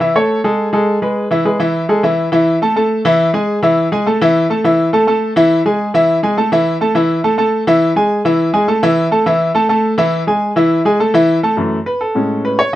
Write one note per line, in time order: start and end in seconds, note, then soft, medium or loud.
0.00 0.12 E3 medium
0.00 0.12 E4 medium
0.00 0.13 E5 medium
0.15 0.39 A3 medium
0.15 0.39 A4 medium
0.15 0.39 C#5 medium
0.44 0.68 G#3 medium
0.44 0.68 G#4 medium
0.44 0.68 A4 medium
0.73 0.97 G#3 medium
0.73 0.97 G#4 medium
0.73 0.97 A4 medium
1.02 1.26 G#3 medium
1.02 1.26 G#4 medium
1.02 1.26 B4 medium
1.31 1.43 E3 medium
1.31 1.43 E4 medium
1.31 1.43 E5 medium
1.45 1.57 G#3 medium
1.45 1.57 G#4 medium
1.45 1.58 B4 medium
1.60 1.84 E3 medium
1.60 1.84 E4 medium
1.60 1.84 E5 medium
1.89 2.01 G#3 medium
1.89 2.01 G#4 medium
1.89 2.01 A4 medium
2.03 2.27 E3 medium
2.03 2.27 E4 medium
2.03 2.28 E5 medium
2.32 2.56 E3 medium
2.32 2.56 E4 medium
2.32 2.56 E5 medium
2.62 2.74 A3 medium
2.62 2.74 A4 medium
2.62 2.74 A5 medium
2.76 3.00 A3 medium
2.76 3.00 A4 medium
2.76 3.00 A5 medium
3.05 3.29 E3 loud
3.05 3.29 E4 loud
3.05 3.29 E5 medium
3.34 3.57 G#3 medium
3.34 3.58 G#4 medium
3.34 3.58 G#5 medium
3.63 3.86 E3 medium
3.63 3.86 E4 medium
3.63 3.87 E5 medium
3.92 4.04 G#3 medium
3.92 4.04 G#4 medium
3.92 4.04 G#5 medium
4.06 4.18 A3 medium
4.06 4.18 A4 medium
4.06 4.19 A5 medium
4.21 4.45 E3 loud
4.21 4.45 E4 medium
4.21 4.45 E5 medium
4.50 4.62 A3 medium
4.50 4.62 A4 medium
4.50 4.62 A5 medium
4.64 4.88 E3 medium
4.64 4.88 E4 medium
4.64 4.88 E5 medium
4.93 5.05 A3 medium
4.93 5.05 A4 medium
4.93 5.05 A5 medium
5.07 5.31 A3 medium
5.07 5.31 A4 medium
5.07 5.31 A5 medium
5.36 5.60 E3 medium
5.36 5.60 E4 loud
5.36 5.60 E5 loud
5.66 5.89 G#3 medium
5.66 5.89 G#4 medium
5.66 5.89 G#5 medium
5.94 6.18 E3 medium
5.94 6.18 E4 medium
5.94 6.18 E5 loud
6.23 6.35 G#3 medium
6.23 6.35 G#4 medium
6.23 6.35 G#5 medium
6.37 6.49 A3 medium
6.37 6.49 A4 medium
6.37 6.50 A5 medium
6.52 6.76 E3 medium
6.52 6.76 E4 loud
6.52 6.76 E5 medium
6.81 6.93 A3 medium
6.81 6.93 A4 medium
6.81 6.93 A5 medium
6.95 7.19 E3 medium
6.95 7.19 E4 medium
6.95 7.19 E5 medium
7.24 7.36 A3 medium
7.24 7.36 A4 medium
7.24 7.36 A5 medium
7.38 7.62 A3 medium
7.38 7.62 A4 medium
7.38 7.62 A5 medium
7.67 7.91 E3 medium
7.67 7.91 E4 medium
7.67 7.91 E5 loud
7.96 8.20 G#3 medium
7.96 8.20 G#4 medium
7.96 8.20 G#5 medium
8.25 8.49 E3 medium
8.25 8.49 E4 medium
8.25 8.49 E5 medium
8.53 8.65 G#3 medium
8.53 8.66 G#4 medium
8.53 8.66 G#5 medium
8.68 8.80 A3 medium
8.68 8.80 A4 medium
8.68 8.80 A5 medium
8.83 9.06 E3 loud
8.83 9.06 E4 medium
8.83 9.07 E5 loud
9.11 9.23 A3 medium
9.11 9.24 A4 medium
9.11 9.24 A5 medium
9.26 9.50 E3 medium
9.26 9.50 E4 medium
9.26 9.50 E5 medium
9.55 9.67 A3 medium
9.55 9.67 A4 medium
9.55 9.67 A5 medium
9.69 9.93 A3 medium
9.69 9.93 A4 medium
9.69 9.93 A5 medium
9.98 10.22 E3 loud
9.98 10.22 E4 medium
9.98 10.22 E5 medium
10.27 10.51 G#3 medium
10.27 10.51 G#4 medium
10.27 10.51 G#5 medium
10.56 10.80 E3 medium
10.56 10.80 E4 medium
10.56 10.80 E5 medium
10.85 10.97 G#3 medium
10.85 10.97 G#4 medium
10.85 10.97 G#5 medium
11.00 11.11 A3 medium
11.00 11.12 A4 medium
11.00 11.12 A5 medium
11.14 11.38 E3 loud
11.14 11.38 E4 loud
11.14 11.38 E5 loud
11.43 11.55 A3 medium
11.43 11.55 A4 medium
11.43 11.55 A5 medium
11.57 11.76 F#2 medium
11.57 11.77 E3 medium
11.57 11.77 A3 medium
11.86 12.00 B4 medium
12.01 12.41 A4 medium
12.15 12.56 A2 medium
12.15 12.57 G#3 soft
12.15 12.57 C#4 medium
12.45 12.58 B4 medium
12.59 12.73 C#5 medium